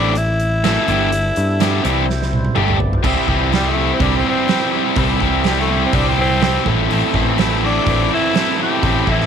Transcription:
Already playing: picked electric bass A1, overdriven electric guitar A2 E3 C4 E4 A4, tonewheel organ G3 C4 E4 A4, distorted electric guitar A3, tenor saxophone D4
0.15 tenor saxophone E4, closed hi-hat
0.40 closed hi-hat
0.64 overdriven electric guitar A2 E3 C4 E4 A4, distorted electric guitar A3, snare, closed hi-hat
0.88 picked electric bass G1, overdriven electric guitar G2 D3 G3 B3 D4 G4, tonewheel organ G3 B3 D4 A4, closed hi-hat
1.12 closed hi-hat
1.36 picked electric bass G2, closed hi-hat
1.60 overdriven electric guitar G2 D3 G3 B3 D4 G4, snare, closed hi-hat
1.82 picked electric bass C2, overdriven electric guitar C3 E3 G3 E4 G4, tonewheel organ G3 C4 E4 C5, distorted electric guitar C4, closed hi-hat
2.10 snare
2.22 snare
2.33 high tom
2.45 high tom
2.55 picked electric bass G1, overdriven electric guitar G3 A3 D4 G4, tonewheel organ A3 D4 G4 D5, mid tom
2.68 mid tom
2.74 tonewheel organ A3 B3 C4
2.80 tonewheel organ D4, floor tom
2.86 tonewheel organ E4 F4
2.91 tonewheel organ G4 A4, floor tom
2.96 tonewheel organ B4 C5
3.02 picked electric bass C2, overdriven electric guitar C3 G3 C4, distorted electric guitar E3, tonewheel organ G3 C4 E4 C5 D5, kick, crash
3.06 overdriven electric guitar E4 G4
3.28 picked electric bass C2, overdriven electric guitar C3 G3 C4 E4 G4, distorted electric guitar E3, kick
3.51 overdriven electric guitar C3 G3 C4 E4 G4, distorted electric guitar E3, snare, open hi-hat
3.55 tenor saxophone G3
3.68 tenor saxophone A3
3.76 overdriven electric guitar C3 G3 C4 E4 G4, distorted electric guitar E3
3.93 tenor saxophone C4
3.99 picked electric bass C2, overdriven electric guitar C3 G3 C4 E4 G4, distorted electric guitar E3, tenor saxophone D4, kick, open hi-hat
4.17 tenor saxophone C4
4.24 overdriven electric guitar C3 G3 C4 E4 G4, distorted electric guitar E3
4.29 tenor saxophone C4
4.48 overdriven electric guitar C3 G3 C4 E4 G4, distorted electric guitar E3, snare, open hi-hat
4.71 overdriven electric guitar C3 G3 C4 E4 G4, distorted electric guitar E3
4.96 picked electric bass C2, overdriven electric guitar C3 G3 C4 E4 G4, distorted electric guitar E3, kick, open hi-hat
5.20 picked electric bass C2, overdriven electric guitar C3 G3 C4 E4 G4, distorted electric guitar E3, kick
5.44 overdriven electric guitar C3 G3 C4 E4 G4, distorted electric guitar E3, snare, open hi-hat
5.49 tenor saxophone G3
5.60 tenor saxophone A3
5.70 overdriven electric guitar C3 G3 C4 E4 G4, distorted electric guitar E3
5.86 tenor saxophone C4
5.93 picked electric bass C2, overdriven electric guitar C3 G3 C4 E4 G4, distorted electric guitar E3, tenor saxophone D4, kick, open hi-hat
6.09 tenor saxophone C4
6.18 overdriven electric guitar C3 G3 C4 E4 G4, distorted electric guitar E3, tenor saxophone C4
6.41 overdriven electric guitar C3 G3 C4 E4 G4, distorted electric guitar E3, snare, open hi-hat
6.64 picked electric bass A1, overdriven electric guitar A2 E3 C4 E4 A4, tonewheel organ A3 C4 E4 C5, distorted electric guitar A3, kick
6.89 picked electric bass A1, overdriven electric guitar A2 E3 C4 E4 A4, open hi-hat
6.93 distorted electric guitar A3
7.14 picked electric bass A1, overdriven electric guitar A2 E3 C4 E4 A4, distorted electric guitar A3, kick
7.37 overdriven electric guitar A2 E3 C4 E4 A4, distorted electric guitar A3, snare, open hi-hat
7.61 overdriven electric guitar A2 E3 C4 E4 A4, distorted electric guitar A3
7.65 tenor saxophone D4
7.85 picked electric bass A1, overdriven electric guitar A2 E3 C4 E4 A4, distorted electric guitar A3, kick, open hi-hat
8.10 overdriven electric guitar A2 E3 C4 E4 A4, distorted electric guitar A3
8.14 tenor saxophone E4
8.34 overdriven electric guitar A2 E3 C4 E4 A4, snare, open hi-hat
8.38 distorted electric guitar A3
8.58 overdriven electric guitar A2 E3 C4 E4 A4, distorted electric guitar A3
8.63 tenor saxophone G4
8.82 picked electric bass A1, overdriven electric guitar A2 E3 C4 E4 A4, distorted electric guitar A3, kick, open hi-hat
9.07 picked electric bass A1, overdriven electric guitar A2 E3 C4 E4 A4, distorted electric guitar A3, tenor saxophone E4, kick
9.20 snare

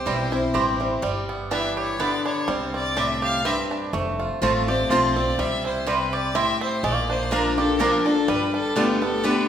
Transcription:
Already playing: steel-string acoustic guitar C3, five-string banjo C4 G4, fiddle C5
0.06 upright bass B1, steel-string acoustic guitar E3 G3 C4 E4, five-string banjo G3, mandolin C4 E4 C5 G5
0.32 steel-string acoustic guitar C4 E4, five-string banjo E4
0.54 upright bass A1, steel-string acoustic guitar E3 G3 C4 E4, mandolin C4 E4 C5 G5, five-string banjo G4
0.80 five-string banjo G3, steel-string acoustic guitar C4 E4
1.02 upright bass G1, steel-string acoustic guitar G3, five-string banjo G3
1.29 five-string banjo B3
1.51 steel-string acoustic guitar E3, mandolin B3 E4 B4 G5, five-string banjo D4, fiddle E5
1.77 five-string banjo G4, fiddle C#5
1.99 steel-string acoustic guitar D3, mandolin B3 E4 B4 G5, five-string banjo B3, fiddle D5
2.26 five-string banjo D4, fiddle C#5
2.48 upright bass C2, steel-string acoustic guitar C3, five-string banjo G3, fiddle C5
2.74 five-string banjo C4, fiddle D5
2.96 steel-string acoustic guitar A2, mandolin C4 E4 D5 G5, five-string banjo D4, fiddle E5
3.22 five-string banjo G4, fiddle F5
3.45 steel-string acoustic guitar G2, mandolin C4 E4 D5 G5, five-string banjo C4, fiddle E5
3.71 five-string banjo D4
3.93 upright bass F1, steel-string acoustic guitar F2, five-string banjo A3
4.20 five-string banjo F4
4.42 upright bass A1, steel-string acoustic guitar F3 A3 C4 F4, five-string banjo A3, mandolin C4 F4 C5 A5
4.68 steel-string acoustic guitar C4 F4, five-string banjo G4, fiddle D5
4.90 upright bass B1, steel-string acoustic guitar F3 A3 C4 F4, mandolin C4 F4 C5 A5, five-string banjo F4, fiddle C5
5.16 five-string banjo C4, steel-string acoustic guitar C4 F4, fiddle D5
5.38 upright bass C2, steel-string acoustic guitar C3, five-string banjo G3, fiddle E5
5.65 five-string banjo E4, fiddle C5
5.87 steel-string acoustic guitar C3, five-string banjo G3, mandolin C4 E4 C5 G5, fiddle B4
6.13 five-string banjo G4, fiddle D5
6.35 steel-string acoustic guitar A2, mandolin C4 E4 C5 G5, five-string banjo E4, fiddle E5
6.61 five-string banjo C4, fiddle C5
6.83 upright bass A#1, steel-string acoustic guitar A#2, five-string banjo G#3, fiddle D5
6.94 five-string banjo A#3
7.10 five-string banjo D4, fiddle C5
7.31 steel-string acoustic guitar F3 A#3 D4 F4, mandolin A#3 F4 D5 A#5, five-string banjo A#3, fiddle A#4
7.57 steel-string acoustic guitar D4 F4, five-string banjo G4, fiddle A4
7.79 steel-string acoustic guitar F3 A#3 D4 F4, mandolin A#3 F4 D5 A#5, five-string banjo D4, fiddle A#4
8.05 five-string banjo D4, steel-string acoustic guitar D4 F4, fiddle A4
8.28 upright bass G1, steel-string acoustic guitar G2, five-string banjo G3, fiddle B4
8.54 five-string banjo D4, fiddle A4
8.76 steel-string acoustic guitar D3 A3 B3 G4, five-string banjo G3, mandolin B3 G4 D5 A5, fiddle F4
9.01 five-string banjo B3, steel-string acoustic guitar B3 G4, fiddle A4
9.24 steel-string acoustic guitar D3 A3 B3 G4, mandolin B3 G4 D5 A5, five-string banjo D4, fiddle B4

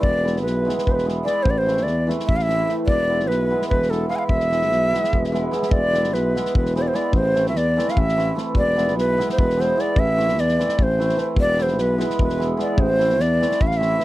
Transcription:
0.00 tuba E1, ney D5, kick
0.23 hammered dulcimer E3 G#3 B3 E4, snare
0.36 snare
0.42 tuba B1, ney B4
0.47 snare
0.65 hammered dulcimer E3 G#3 B3 E4
0.69 snare
0.78 snare
0.85 tuba E1, ney B4, kick
0.91 ney B4 C5
0.98 snare
1.05 hammered dulcimer E3 G#3 B3 E4, snare
1.24 hammered dulcimer E3 G#3 B3 E4, ney D5, snare
1.43 tuba A1, ney C5, kick
1.50 ney D5
1.58 ney C5
1.66 hammered dulcimer E3 A3 C4 E4, snare
1.77 snare
1.83 tuba E2, ney D5, snare
2.07 hammered dulcimer E3 A3 C4 E4, snare
2.19 snare
2.26 tuba A1, ney E5, kick
2.36 ney F5, snare
2.42 ney E5
2.48 hammered dulcimer E3 A3 C4 E4, snare
2.67 hammered dulcimer E3 A3 C4 E4, snare
2.87 tuba E1, ney D5, kick
3.08 hammered dulcimer E3 G#3 B3 E4
3.20 snare
3.27 tuba B1, ney B4, snare
3.50 hammered dulcimer E3 G#3 B3 E4
3.62 snare
3.69 tuba E1, ney B4, kick
3.82 snare
3.90 hammered dulcimer E3 G#3 B3 E4, ney A4, snare
4.09 hammered dulcimer E3 G#3 B3 E4, ney F5, snare
4.16 ney F5 G#5
4.27 tuba E1, ney E5, kick
4.40 snare
4.51 hammered dulcimer E3 G#3 B3 E4, snare
4.62 snare
4.70 tuba B1, snare
4.92 hammered dulcimer E3 G#3 B3 E4, snare
5.04 snare
5.12 tuba E1, kick
5.24 snare
5.32 hammered dulcimer E3 G#3 B3 E4, snare
5.51 hammered dulcimer E3 G#3 B3 E4, snare
5.63 ney E5, snare
5.71 tuba E1, ney D5, kick
5.93 hammered dulcimer E3 G#3 B3 E4, snare
6.04 snare
6.13 tuba B1, ney B4, snare
6.35 hammered dulcimer E3 G#3 B3 E4, snare
6.45 snare
6.54 tuba E1, ney B4, kick
6.66 snare
6.75 hammered dulcimer E3 G#3 B3 E4, ney C5, snare
6.82 ney D5
6.88 ney C5
6.94 hammered dulcimer E3 G#3 B3 E4, ney D5, snare
7.13 tuba A1, ney C5, kick
7.35 hammered dulcimer E3 A3 C4 E4, snare
7.46 ney E5, snare
7.54 tuba E2, ney D5, snare
7.77 hammered dulcimer E3 A3 C4 E4, snare
7.88 ney F5, snare
7.96 tuba A1, ney E5, kick
8.09 snare
8.16 hammered dulcimer E3 A3 C4 E4, snare
8.35 hammered dulcimer E3 A3 C4 E4, snare
8.54 tuba E1, ney D5, kick
8.76 hammered dulcimer E3 G#3 B3 E4, snare
8.88 snare
8.96 tuba B1, ney B4, snare
9.17 hammered dulcimer E3 G#3 B3 E4, snare
9.30 ney C5, snare
9.38 tuba E1, ney B4, kick
9.50 snare
9.57 hammered dulcimer E3 G#3 B3 E4, snare
9.61 ney C5
9.76 hammered dulcimer E3 G#3 B3 E4, snare
9.81 ney D5
9.96 tuba A1, ney E5, kick
10.17 hammered dulcimer E3 A3 C4 E4, snare
10.28 snare
10.37 tuba E2, ney D5, snare
10.49 snare
10.58 hammered dulcimer E3 A3 C4 E4, snare
10.69 snare
10.78 tuba A1, kick
10.83 ney C5
10.98 hammered dulcimer E3 A3 C4 E4, snare
11.09 snare
11.16 hammered dulcimer E3 A3 C4 E4, snare
11.35 tuba E1, kick
11.40 ney D5
11.57 hammered dulcimer E3 G#3 B3 E4, snare
11.62 ney C5
11.68 snare
11.77 tuba B1, ney B4, snare
11.98 hammered dulcimer E3 G#3 B3 E4, snare
12.10 snare
12.19 tuba E1, kick
12.23 ney B4
12.29 snare
12.38 hammered dulcimer E3 G#3 B3 E4, snare
12.57 hammered dulcimer E3 G#3 B3 E4, ney D5, snare
12.77 tuba A1, ney C5, kick
12.98 hammered dulcimer E3 A3 C4 E4, snare
13.09 snare
13.19 tuba E2, ney D5, snare
13.41 hammered dulcimer E3 A3 C4 E4, snare
13.51 snare
13.60 tuba A1, ney E5, kick
13.67 ney F5
13.71 snare
13.77 hammered dulcimer E3 A3 C4, ney E5
13.82 hammered dulcimer E4, snare
13.98 hammered dulcimer E3 A3 C4 E4, snare

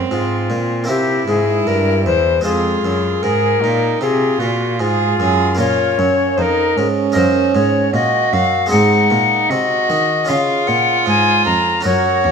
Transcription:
Already playing: violin C4, harpsichord F4
0.10 cello G#2, harpsichord G#2, recorder F4
0.49 cello A#2, harpsichord A#2
0.84 harpsichord A#3 C4 E4
0.88 harpsichord C3, cello C3, violin E4, recorder G4
1.28 cello G#2, harpsichord G#2, recorder G#4
1.66 cello G2, harpsichord G2, recorder A#4
2.05 cello E2, harpsichord E2, recorder C5
2.41 cello F2, harpsichord G#3 C4 F4, violin F4, recorder G#4
2.45 harpsichord F2
2.83 cello F#2, harpsichord F#2
3.23 harpsichord G#2, cello G#2, violin G#4, recorder A#4
3.62 cello A#2, harpsichord A#2, violin D#4
4.01 harpsichord C3, cello C3, violin F4, recorder G#4
4.39 harpsichord A#2, cello A#2, recorder F#4
4.80 harpsichord G#2, cello G#2, recorder F4, violin G#4
5.19 cello F#2, harpsichord F#2, violin G#4
5.55 cello A#2, harpsichord A#3 C#4 F4
5.59 harpsichord A#2, violin F4, recorder C#5
5.98 cello F#2, harpsichord F#2, violin C#4
6.37 cello F2, harpsichord F2, violin D#4, recorder C5
6.42 recorder A#4
6.76 cello G#2, harpsichord G#2, violin C#4
7.12 cello F#2, harpsichord A#3 D#4 A#4, recorder C5
7.16 harpsichord F#2
7.54 cello G#2, harpsichord G#2, recorder C#5
7.93 cello A#2, harpsichord A#2, violin F#4, recorder D#5
8.33 cello F#2, harpsichord F#2, recorder F5
8.66 harpsichord G#3 C4 D#4
8.70 cello G#2, harpsichord G#2 G#4, violin D#4, recorder F#5
9.11 harpsichord A#2, cello A#2
9.49 cello C3, harpsichord C3, violin F#4, recorder D#5
9.89 cello D#3, harpsichord D#3
10.25 harpsichord C#4 F4 G#4
10.29 cello C#3, harpsichord C#3, violin F4, recorder F5
10.67 harpsichord A#2, cello A#2, recorder F#5
11.06 harpsichord G#2, cello G#2, recorder G#5
11.45 harpsichord F2, cello F2, recorder A#5
11.81 harpsichord C#4 F#4 A#4
11.85 cello F#2, harpsichord F#2, violin F#4, recorder C#5
12.24 harpsichord D#2, cello D#2

